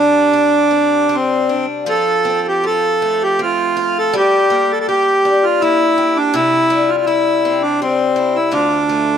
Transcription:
Already playing: steel-string acoustic guitar C3 G3 D4, accordion D4
0.33 steel-string acoustic guitar D4
0.71 steel-string acoustic guitar C4
1.09 steel-string acoustic guitar G3
1.15 accordion C4
1.49 steel-string acoustic guitar D4
1.86 steel-string acoustic guitar F3 F4, accordion A4
2.25 steel-string acoustic guitar C4
2.48 accordion G4
2.64 steel-string acoustic guitar F4, accordion A4
3.02 steel-string acoustic guitar A3
3.23 accordion G4
3.39 steel-string acoustic guitar C4, accordion F4
3.77 steel-string acoustic guitar F4
3.98 accordion A4
4.13 steel-string acoustic guitar G3 G4, accordion G4
4.50 steel-string acoustic guitar A#3
4.72 accordion A4
4.80 accordion A4
4.89 accordion G4, steel-string acoustic guitar G4
5.25 steel-string acoustic guitar D4
5.44 accordion F4
5.61 steel-string acoustic guitar A#3, accordion E4
5.98 steel-string acoustic guitar G4
6.16 accordion D4
6.34 steel-string acoustic guitar C3 E4, accordion E4
6.70 steel-string acoustic guitar G3
6.89 accordion F4
6.98 accordion F4
7.06 accordion E4, steel-string acoustic guitar E4
7.45 steel-string acoustic guitar C4
7.62 accordion D4
7.82 steel-string acoustic guitar G3, accordion C4
8.16 steel-string acoustic guitar E4
8.36 accordion E4
8.51 steel-string acoustic guitar D2 F4, accordion D4
8.89 steel-string acoustic guitar A3

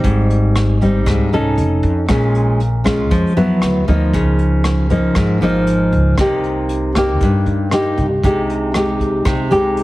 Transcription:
Already playing: nylon-string guitar G3 C4 D#4
0.04 upright bass G#1, nylon-string guitar G#2, kick, closed hi-hat
0.30 closed hi-hat
0.56 cross-stick, closed hi-hat
0.81 nylon-string guitar G3 C4 D#4, kick, closed hi-hat
1.06 upright bass C2, nylon-string guitar G#2, kick, cross-stick, closed hi-hat
1.33 upright bass C2, nylon-string guitar C#4 D#4 A4, closed hi-hat
1.57 upright bass F1, closed hi-hat
1.83 upright bass F2, kick, closed hi-hat
2.09 upright bass A#1, nylon-string guitar A#2 G#3 C#4 F4, kick, cross-stick, closed hi-hat
2.35 closed hi-hat
2.60 closed hi-hat
2.84 nylon-string guitar G#3 C#4 F4, kick, cross-stick
3.11 upright bass F2, nylon-string guitar F3, kick, closed hi-hat
3.37 upright bass F2, nylon-string guitar F#3 B3 E4, closed hi-hat
3.62 upright bass D2, cross-stick, closed hi-hat
3.88 upright bass D2, nylon-string guitar F3 A#3 D#4, kick, closed hi-hat
4.14 upright bass C#2, nylon-string guitar C#3, kick, closed hi-hat
4.39 closed hi-hat
4.64 cross-stick, closed hi-hat
4.90 nylon-string guitar F3 A#3 D#4, kick, closed hi-hat
5.15 upright bass G#1, nylon-string guitar G#2, kick, cross-stick, closed hi-hat
5.41 upright bass G#1, nylon-string guitar F3 A#3 D#4, closed hi-hat
5.67 closed hi-hat
5.92 upright bass C#2, kick, closed hi-hat
6.18 upright bass C2, nylon-string guitar C3 A#3 D#4 G4, kick, cross-stick, closed hi-hat
6.43 closed hi-hat
6.69 closed hi-hat
6.95 nylon-string guitar A#3 D#4 G4, kick, cross-stick, closed hi-hat
7.20 upright bass G2, nylon-string guitar G2, kick, closed hi-hat
7.46 upright bass G2, closed hi-hat
7.71 nylon-string guitar A#3 D#4 G4, cross-stick, closed hi-hat
7.97 upright bass C2, kick, closed hi-hat
8.23 upright bass C2, nylon-string guitar C3 G#3 D#4 G4, kick, closed hi-hat
8.50 closed hi-hat
8.74 nylon-string guitar G#3 D#4 G4, cross-stick, closed hi-hat
9.00 kick, closed hi-hat
9.25 upright bass C2, nylon-string guitar C3, kick, cross-stick, closed hi-hat
9.51 upright bass C2, nylon-string guitar G#3 D#4 G4, closed hi-hat
9.77 closed hi-hat

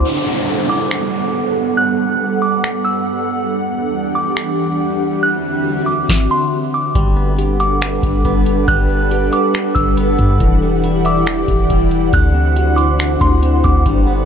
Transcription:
0.04 ambient pad G2 G3 B3 A4 F#5, downlifter
0.69 synth bell D6
0.91 finger snap
1.77 synth bell F#6
2.42 synth bell D6
2.64 finger snap
2.85 synth bell E6
3.50 ambient pad E2 E3 D4 G4, swell
4.15 synth bell D6
4.37 finger snap
5.23 synth bell F#6
5.86 synth bell D6
6.09 kick, snare
6.31 synth bell C6
6.74 synth bell D6
6.95 808-style bass G1, ambient pad G3 D4 A4 B4 F#5, clean electric guitar G3, kick, closed hi-hat
7.16 clean electric guitar B3
7.38 clean electric guitar G4, closed hi-hat
7.60 clean electric guitar F#5, synth bell D6, closed hi-hat
7.81 clean electric guitar G3, finger snap, closed hi-hat
8.03 808-style bass G1, kick, closed hi-hat
8.25 808-style bass G1, clean electric guitar B3, kick, closed hi-hat
8.46 closed hi-hat
8.68 808-style bass G1, clean electric guitar G3, synth bell F#6, kick, closed hi-hat
8.89 clean electric guitar B3
9.11 clean electric guitar G4, closed hi-hat
9.32 clean electric guitar F#5, synth bell D6, closed hi-hat
9.54 clean electric guitar G3, finger snap, closed hi-hat
9.75 808-style bass G1, synth bell E6, kick, closed hi-hat
9.97 clean electric guitar B3, closed hi-hat
10.19 808-style bass G2, kick, closed hi-hat
10.40 808-style bass E1, ambient pad E3 E4 G4 D5, clean electric guitar E3, kick, closed hi-hat
10.62 clean electric guitar G3
10.84 clean electric guitar E4, closed hi-hat
11.05 clean electric guitar E5, synth bell D6, closed hi-hat
11.27 clean electric guitar E3, finger snap, closed hi-hat
11.48 808-style bass E1, kick, closed hi-hat
11.70 808-style bass E1, clean electric guitar G3, kick, closed hi-hat
11.91 closed hi-hat
12.13 808-style bass D2, ambient pad D3 D4 E4 C5, clean electric guitar D3, synth bell F#6, kick, closed hi-hat
12.34 clean electric guitar C4
12.56 clean electric guitar F#4, closed hi-hat
12.76 clean electric guitar C6, synth bell D6, closed hi-hat
12.99 clean electric guitar D3, finger snap, closed hi-hat
13.21 808-style bass D2, synth bell C6, kick, closed hi-hat
13.42 clean electric guitar C4, closed hi-hat
13.64 808-style bass D2, synth bell D6, kick, closed hi-hat
13.86 808-style bass G1, ambient pad G3 D4 A4 B4, clean electric guitar G3, kick, closed hi-hat
14.07 clean electric guitar B3

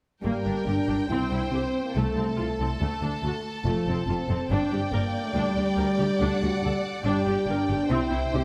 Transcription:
0.22 double bass section G1, cello section G2, french horn section G3, viola section A#3, violin section A#4 G5
0.44 double bass section G1, cello section G2, viola section D4
0.66 double bass section G1, cello section G2, french horn section D4, viola section G4
0.88 double bass section G1, cello section G2, viola section D4
1.09 cello section C2, double bass section C2, viola section C4, french horn section E4, violin section C5
1.31 double bass section C2, cello section C2, viola section E4
1.52 cello section C2, double bass section C2, french horn section C4, viola section G4
1.85 french horn section A#3
1.95 cello section C2, double bass section C2, french horn section A3, viola section A3, violin section A4 A5
2.16 cello section C2, double bass section C2, viola section C4
2.37 double bass section C2, cello section C2, viola section F4
2.59 double bass section C2, cello section C2, viola section C4
2.80 cello section D2, double bass section D2, viola section A3
3.02 cello section D2, double bass section D2, viola section D4
3.23 cello section D2, double bass section D2, viola section F#4
3.65 double bass section F1, cello section F2, french horn section F3, viola section A3
3.86 double bass section F1, cello section F2, viola section C4
4.06 double bass section F1, cello section F2, french horn section C4, viola section F4
4.28 double bass section F1, cello section F2, viola section C4
4.49 double bass section G1, cello section G2, viola section D4, french horn section D4, violin section D5 G5
4.71 double bass section G1, cello section G2, viola section G4
4.92 double bass section G1, cello section G2, french horn section A#3, viola section A#4
5.25 french horn section A3
5.34 double bass section D2, cello section D2, french horn section G3, viola section D4
5.55 double bass section D2, cello section D2, viola section G4
5.76 double bass section D2, cello section D2, viola section A#4
5.97 double bass section D2, cello section D2, viola section G4
6.20 cello section D2, double bass section D2, viola section D4, violin section F#5
6.41 cello section D2, double bass section D2, viola section F#4
6.61 cello section D2, double bass section D2, viola section A4
7.04 double bass section G1, cello section G2, french horn section G3, viola section D4, violin section G5
7.26 double bass section G1, cello section G2, viola section G4
7.47 double bass section G1, cello section G2, french horn section D4, viola section A#4
7.68 double bass section G1, cello section G2, viola section G4
7.89 double bass section C2, cello section C3, viola section C4, french horn section E4, violin section C5
8.10 double bass section C2, cello section C3, viola section E4
8.33 double bass section C2, cello section C3, french horn section C4, viola section G4

